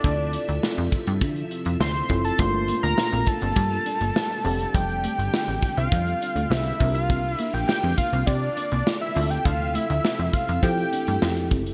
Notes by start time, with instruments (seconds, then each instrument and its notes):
Already playing: string machine C3 F3 E5, tine electric piano C4 E4 F4 A4, analog synth lead D5
0.04 analog synth bass D2, kick, closed hi-hat
0.33 closed hi-hat
0.49 analog synth bass D2, closed hi-hat
0.63 snare
0.78 analog synth bass F2
0.92 kick, closed hi-hat
1.07 analog synth bass G2, closed hi-hat
1.21 analog synth bass D3, kick, closed hi-hat
1.36 closed hi-hat
1.51 closed hi-hat
1.65 analog synth bass F2, closed hi-hat
1.80 analog synth bass D2, analog synth lead C6, snare
1.95 closed hi-hat
2.09 analog synth bass F#1, tine electric piano C4 E4 F4 A4, kick, closed hi-hat
2.25 analog synth lead A5, closed hi-hat
2.38 analog synth bass G1, string machine A#2 G3 F4, clean electric guitar G3, tine electric piano A3 A#3 D4 F4, analog synth lead C6, kick, closed hi-hat
2.68 clean electric guitar A#3, closed hi-hat
2.83 analog synth bass D2, analog synth lead A#5, closed hi-hat
2.98 snare
3.13 analog synth bass A#1, clean electric guitar C4
3.27 analog synth lead A5, muted clean electric guitar stroke, kick, closed hi-hat
3.42 analog synth bass G1, clean electric guitar C4, closed hi-hat
3.56 analog synth bass G2, muted clean electric guitar stroke, kick, closed hi-hat
3.86 clean electric guitar D4, closed hi-hat
4.01 analog synth bass G1, clean electric guitar A#3, closed hi-hat
4.16 snare
4.44 analog synth bass F1, string machine D3 G4, tine electric piano C4 D4 G4 A4, clean electric guitar C4, open hi-hat
4.61 closed hi-hat
4.74 analog synth bass F1, clean electric guitar G3, analog synth lead G5, kick, closed hi-hat
4.89 muted clean electric guitar stroke, closed hi-hat
5.04 clean electric guitar A3, closed hi-hat
5.19 analog synth bass G1, closed hi-hat
5.34 snare
5.48 analog synth bass A1, clean electric guitar C4, closed hi-hat
5.62 muted clean electric guitar stroke, kick, closed hi-hat
5.77 analog synth bass C2, clean electric guitar C4, analog synth lead F5, closed hi-hat
5.92 analog synth bass F2, muted clean electric guitar stroke, kick, closed hi-hat
6.07 closed hi-hat
6.22 clean electric guitar D4, closed hi-hat
6.36 analog synth bass D2, clean electric guitar A3, closed hi-hat
6.50 analog synth bass C2, analog synth lead E5, snare
6.66 closed hi-hat
6.80 analog synth bass C2, string machine A#3 F4, clean electric guitar C4, tine electric piano D4 F4 G4 A#4, kick, open hi-hat
6.95 analog synth lead F5, closed hi-hat
7.10 clean electric guitar C4, kick, closed hi-hat
7.24 muted clean electric guitar stroke
7.35 analog synth lead E5
7.39 clean electric guitar A#3, closed hi-hat
7.54 analog synth bass A#1, analog synth lead G5, closed hi-hat
7.68 analog synth lead G5, snare
7.83 analog synth bass F2, clean electric guitar C4
7.98 analog synth lead F5, muted clean electric guitar stroke, kick, closed hi-hat
8.13 analog synth bass C2, clean electric guitar C4, closed hi-hat
8.27 analog synth bass C3, analog synth lead D5, kick, closed hi-hat
8.56 clean electric guitar D4, analog synth lead D5, closed hi-hat
8.72 analog synth bass C2, clean electric guitar A#3, closed hi-hat
8.87 snare
9.01 analog synth lead E5
9.15 analog synth bass D2, string machine C3 F3 E5, tine electric piano C4 E4 F4 A4, clean electric guitar F4, open hi-hat
9.30 analog synth lead G5, closed hi-hat
9.45 analog synth bass D2, clean electric guitar D4, analog synth lead F5, kick, closed hi-hat
9.60 muted clean electric guitar stroke
9.75 clean electric guitar A3, analog synth lead E5, closed hi-hat
9.90 analog synth bass D2, closed hi-hat
10.05 snare
10.19 analog synth bass F2, clean electric guitar C4, closed hi-hat
10.33 analog synth lead F5, muted clean electric guitar stroke, kick, closed hi-hat
10.48 analog synth bass F2, clean electric guitar C4, closed hi-hat
10.62 string machine E3 A3 G4, analog synth bass F3, tine electric piano C4 E4 G4 A4, analog synth lead G5, muted clean electric guitar stroke, kick, closed hi-hat
10.78 closed hi-hat
10.93 clean electric guitar D4, closed hi-hat
11.07 analog synth bass G2, clean electric guitar A3, closed hi-hat
11.22 analog synth bass F2, snare
11.37 closed hi-hat
11.51 analog synth bass F#1, clean electric guitar C4, kick, closed hi-hat
11.66 closed hi-hat